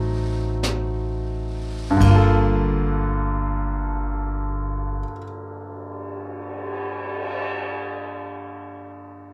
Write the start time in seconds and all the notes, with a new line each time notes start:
Already playing: A1 F#3 A3 C4 D#4
0.63 brush sweep, snare, hi-hat pedal
1.90 G2
1.97 G1 D3, kick, ride
2.03 A#3
2.10 F4
2.16 A4
2.97 cymbal swell